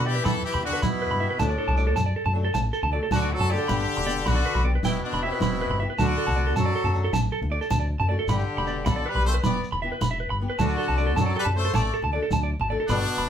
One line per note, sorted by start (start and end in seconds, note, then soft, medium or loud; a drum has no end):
0.00 0.19 B2 medium
0.00 0.16 B3 medium
0.05 0.26 E3 medium
0.05 0.17 D4 medium
0.05 0.24 E4 medium
0.05 0.25 G4 medium
0.05 0.18 G4 medium
0.05 0.13 D5 medium
0.15 0.22 B4 medium
0.22 0.40 E2 medium
0.22 0.35 E3 medium
0.22 0.45 E3 medium
0.22 0.35 B3 medium
0.22 0.36 E4 medium
0.22 0.44 E4 medium
0.22 0.36 G4 medium
0.22 0.44 A4 loud
0.22 0.32 B5 medium
0.22 high conga medium
0.22 shekere medium
0.44 0.62 E3 medium
0.44 0.62 E4 medium
0.44 0.62 G4 medium
0.44 shekere soft
0.54 0.69 E2 medium
0.54 0.60 B5 medium
0.54 low conga medium
0.61 0.82 D3 medium
0.61 0.74 E3 medium
0.61 0.74 B3 medium
0.61 0.81 D4 medium
0.61 0.75 E4 medium
0.61 0.81 F#4 medium
0.61 0.75 G4 medium
0.61 muted clean electric guitar stroke medium
0.73 0.80 B4 medium
0.82 1.05 E2 loud
0.82 1.45 B2 medium
0.82 1.36 B3 medium
0.82 1.36 E4 medium
0.82 0.89 B5 medium
0.82 high conga medium
0.82 shekere medium
1.02 1.08 B4 medium
1.11 1.26 G2 medium
1.11 1.18 B5 medium
1.11 low conga medium
1.19 1.31 E3 medium
1.19 1.32 B3 medium
1.19 1.32 E4 medium
1.19 1.33 G4 medium
1.19 1.27 E5 medium
1.19 low conga soft
1.30 1.37 B4 medium
1.38 1.54 D2 loud
1.38 1.50 F#3 medium
1.38 1.51 A3 medium
1.38 1.97 A3 medium
1.38 1.51 D4 medium
1.38 1.98 D4 medium
1.38 1.51 F#4 medium
1.38 1.46 A5 loud
1.38 high conga medium
1.38 shekere medium
1.43 1.99 A2 medium
1.49 1.56 D5 medium
1.58 1.65 A4 medium
1.68 1.97 C2 medium
1.68 1.75 A5 medium
1.68 low conga medium
1.76 1.88 F#3 medium
1.76 1.89 A3 medium
1.76 1.90 D4 medium
1.76 1.90 F#4 medium
1.76 1.84 D5 medium
1.76 shekere soft
1.87 1.94 A4 medium
1.96 2.12 F#2 medium
1.96 2.03 A5 medium
1.96 high conga medium
1.96 shekere medium
2.06 2.13 D5 medium
2.16 2.23 A4 medium
2.25 2.48 F#2 medium
2.25 2.32 A5 medium
2.25 low conga medium
2.33 2.46 F#3 medium
2.33 2.46 A3 medium
2.33 2.47 D4 medium
2.33 2.47 F#4 medium
2.45 2.51 A4 medium
2.54 2.69 A1 medium
2.54 2.61 A5 medium
2.54 high conga medium
2.54 shekere medium
2.73 2.80 A4 medium
2.73 shekere soft
2.83 2.98 D2 medium
2.83 2.90 A5 medium
2.83 low conga medium
2.91 3.04 F#3 medium
2.91 3.04 A3 medium
2.91 3.05 F#4 medium
2.91 2.99 D5 medium
3.03 3.09 A4 medium
3.11 3.33 D2 loud
3.11 3.35 D3 medium
3.11 3.30 D4 medium
3.11 3.30 F#4 medium
3.11 3.19 A5 medium
3.11 high conga medium
3.11 shekere medium
3.22 3.29 D5 medium
3.33 3.54 F#3 medium
3.33 3.51 F#4 medium
3.33 3.51 A4 loud
3.39 3.55 F#2 medium
3.39 3.47 A5 medium
3.39 low conga medium
3.49 4.27 D3 medium
3.49 3.61 F#3 medium
3.49 3.62 A3 medium
3.49 3.62 D4 medium
3.49 4.26 D4 medium
3.49 3.63 F#4 medium
3.49 4.27 G4 loud
3.49 3.56 D5 medium
3.49 low conga soft
3.58 3.65 A4 medium
3.68 3.84 G1 loud
3.68 3.80 B3 medium
3.68 3.81 D4 medium
3.68 3.81 G4 medium
3.68 3.75 B5 medium
3.68 high conga loud
3.68 shekere medium
3.79 shekere soft
3.97 4.26 E1 medium
3.97 muted clean electric guitar stroke medium
3.97 low conga medium
4.07 4.19 B3 medium
4.07 4.19 D4 medium
4.07 4.20 G4 medium
4.07 4.14 D5 medium
4.07 shekere soft
4.26 4.41 B1 medium
4.26 4.65 D3 medium
4.26 4.66 D4 medium
4.26 4.65 F#4 loud
4.26 4.33 B5 medium
4.26 high conga loud
4.26 shekere medium
4.35 4.42 D5 medium
4.46 4.52 B4 medium
4.55 4.77 B1 medium
4.55 4.62 B5 medium
4.55 low conga medium
4.63 4.76 B3 medium
4.63 4.77 D4 medium
4.63 4.77 G4 medium
4.63 4.71 D5 medium
4.75 4.82 B4 medium
4.83 4.98 E1 loud
4.83 5.03 B2 medium
4.83 4.96 E3 medium
4.83 4.96 B3 medium
4.83 5.02 B3 medium
4.83 5.02 E4 medium
4.83 4.96 E4 medium
4.83 4.96 G4 medium
4.83 4.91 G5 medium
4.83 high conga medium
4.83 shekere loud
5.03 5.25 B2 medium
5.03 5.21 B3 medium
5.03 5.21 D4 medium
5.03 shekere soft
5.13 5.28 E1 medium
5.13 5.20 B5 medium
5.13 low conga medium
5.22 5.81 B2 medium
5.22 5.34 E3 medium
5.22 5.34 B3 medium
5.22 5.81 C4 medium
5.22 5.80 E4 loud
5.22 5.35 E4 medium
5.22 5.35 G4 medium
5.22 5.29 E5 medium
5.33 5.39 B4 medium
5.41 5.63 E1 loud
5.41 5.49 B5 medium
5.41 high conga loud
5.41 shekere loud
5.61 5.68 B4 medium
5.69 5.85 G1 medium
5.69 5.77 B5 medium
5.69 low conga medium
5.80 5.92 E3 medium
5.80 5.92 B3 medium
5.80 5.93 E4 medium
5.80 5.93 G4 medium
5.80 5.86 E5 medium
5.90 5.96 B4 medium
5.98 6.14 D2 loud
5.98 6.53 D3 medium
5.98 6.10 A3 medium
5.98 6.53 D4 medium
5.98 6.11 D4 medium
5.98 6.52 F#4 loud
5.98 6.11 F#4 medium
5.98 6.05 A5 loud
5.98 high conga medium
5.98 shekere medium
6.08 6.15 D5 medium
6.18 6.25 A4 medium
6.18 low conga soft
6.27 6.57 C2 medium
6.27 6.34 A5 medium
6.27 low conga medium
6.27 shekere soft
6.36 6.48 A3 medium
6.36 6.49 D4 medium
6.36 6.50 F#4 medium
6.36 6.43 D5 medium
6.47 6.54 A4 medium
6.47 low conga soft
6.56 6.71 F#2 medium
6.56 7.11 F#3 medium
6.56 7.10 F#4 medium
6.56 7.10 A4 medium
6.56 6.63 A5 medium
6.56 high conga medium
6.56 shekere medium
6.66 6.72 D5 medium
6.75 6.82 A4 medium
6.84 7.07 F#2 medium
6.84 6.92 A5 medium
6.84 low conga medium
6.84 shekere soft
6.92 7.05 A3 medium
6.92 7.06 D4 medium
6.92 7.07 F#4 medium
6.92 low conga soft
6.92 shekere soft
7.04 7.11 A4 medium
7.13 7.28 A1 medium
7.13 7.20 A5 medium
7.13 high conga medium
7.13 low conga soft
7.13 shekere loud
7.32 7.39 A4 medium
7.32 low conga soft
7.42 7.57 D2 medium
7.42 low conga medium
7.50 7.63 A3 medium
7.50 7.64 D4 medium
7.50 7.64 F#4 medium
7.50 7.58 D5 medium
7.61 7.68 A4 medium
7.61 shekere soft
7.70 7.94 D2 loud
7.70 7.78 A5 medium
7.70 high conga medium
7.70 low conga soft
7.70 shekere loud
7.80 7.87 D5 medium
7.80 low conga soft
8.00 8.15 F#2 medium
8.00 8.06 A5 medium
8.00 low conga medium
8.08 8.20 A3 medium
8.08 8.21 D4 medium
8.08 8.22 F#4 medium
8.08 8.16 D5 medium
8.19 8.26 A4 medium
8.19 low conga soft
8.27 8.43 G1 loud
8.27 8.90 D3 medium
8.27 8.41 D4 medium
8.27 8.83 D4 medium
8.27 8.83 G4 medium
8.27 8.41 G4 medium
8.27 8.36 B5 medium
8.27 muted steel-string acoustic guitar stroke medium
8.27 high conga medium
8.27 shekere medium
8.38 shekere soft
8.58 8.87 E1 medium
8.58 8.65 B5 medium
8.58 low conga medium
8.67 8.79 B3 medium
8.67 8.80 D4 medium
8.67 8.81 G4 medium
8.67 8.74 D5 medium
8.67 shekere soft
8.86 9.02 B1 medium
8.86 9.10 D3 medium
8.86 9.06 D4 medium
8.86 9.07 A4 medium
8.86 8.93 B5 medium
8.86 high conga medium
8.86 shekere medium
8.96 9.03 D5 medium
9.06 9.26 G3 medium
9.06 9.26 G4 medium
9.06 9.12 B4 medium
9.06 9.26 B4 medium
9.15 9.37 B1 medium
9.15 9.22 B5 medium
9.15 low conga medium
9.25 9.36 A3 medium
9.25 9.36 B3 medium
9.25 9.37 D4 medium
9.25 9.38 G4 medium
9.25 9.34 A4 medium
9.25 9.35 C5 medium
9.34 9.41 B4 medium
9.43 9.59 E1 medium
9.43 9.55 E3 medium
9.43 9.55 B3 medium
9.43 9.63 B3 medium
9.43 9.56 E4 medium
9.43 9.56 G4 medium
9.43 9.62 B4 medium
9.43 9.62 D5 medium
9.43 9.50 B5 medium
9.43 high conga medium
9.43 shekere loud
9.64 shekere soft
9.72 9.87 E1 medium
9.72 9.79 B5 medium
9.72 low conga medium
9.82 9.94 E3 medium
9.82 9.94 B3 medium
9.82 9.95 E4 medium
9.82 9.95 G4 medium
9.82 9.89 E5 medium
9.92 9.98 B4 medium
10.01 10.24 E1 loud
10.01 10.08 B5 medium
10.01 high conga medium
10.01 shekere loud
10.11 10.17 E5 medium
10.20 10.27 B4 medium
10.30 10.45 G1 medium
10.30 10.37 B5 medium
10.40 10.51 E3 medium
10.40 10.52 B3 medium
10.40 10.53 G4 medium
10.40 low conga soft
10.50 10.56 B4 medium
10.58 10.74 D2 loud
10.58 10.70 F#3 medium
10.58 10.70 A3 medium
10.58 10.71 D4 medium
10.58 11.13 D4 medium
10.58 11.13 F#4 medium
10.58 10.71 A4 medium
10.58 10.65 A5 medium
10.58 high conga loud
10.58 shekere loud
10.63 11.22 D3 medium
10.69 10.75 D5 medium
10.69 shekere soft
10.78 10.85 A4 medium
10.88 11.17 C2 medium
10.88 10.95 A5 medium
10.97 11.09 F#3 medium
10.97 11.09 A3 medium
10.97 11.10 D4 medium
10.97 11.11 A4 medium
10.97 11.04 D5 medium
10.97 shekere soft
11.07 11.13 A4 medium
11.16 11.31 F#2 loud
11.16 11.36 F#4 medium
11.16 11.37 A4 medium
11.16 11.23 A5 medium
11.16 high conga medium
11.16 shekere loud
11.21 11.38 F#3 medium
11.26 11.33 D5 medium
11.36 11.47 G3 medium
11.36 11.45 G4 medium
11.36 11.42 A4 medium
11.36 11.47 B4 medium
11.45 11.68 F#2 medium
11.45 11.52 A5 medium
11.45 low conga medium
11.54 11.66 F#3 medium
11.54 11.67 A3 medium
11.54 11.67 D4 medium
11.54 11.72 A4 medium
11.54 11.67 A4 medium
11.54 11.73 C5 loud
11.58 11.77 A3 medium
11.65 11.71 A4 medium
11.73 11.89 A1 medium
11.73 11.93 A4 medium
11.73 11.93 D5 loud
11.73 11.81 A5 medium
11.73 high conga medium
11.73 shekere loud
11.77 11.95 A3 medium
11.94 12.00 A4 medium
11.94 shekere soft
12.02 12.17 D2 medium
12.02 12.10 A5 medium
12.02 low conga medium
12.12 12.23 F#3 medium
12.12 12.24 A3 medium
12.12 12.24 D4 medium
12.12 12.25 A4 medium
12.12 12.19 D5 medium
12.23 12.29 A4 medium
12.31 12.53 D2 loud
12.31 12.39 A5 medium
12.31 high conga medium
12.31 shekere loud
12.43 12.49 D5 medium
12.60 12.75 G#1 medium
12.60 12.67 A5 medium
12.60 low conga medium
12.68 12.81 F#3 medium
12.68 12.81 A3 medium
12.68 12.82 D4 medium
12.68 12.82 A4 medium
12.68 12.77 D5 medium
12.68 low conga soft
12.80 12.86 A4 medium
12.88 13.04 G1 loud
12.88 13.29 B2 medium
12.88 13.29 B3 medium
12.88 13.00 B3 medium
12.88 13.29 D4 loud
12.88 13.01 D4 medium
12.88 13.02 G4 medium
12.88 12.96 B5 medium
12.88 high conga medium
12.88 shekere medium
13.17 13.29 E1 medium
13.17 13.25 B5 medium
13.17 low conga medium
13.25 13.29 B3 medium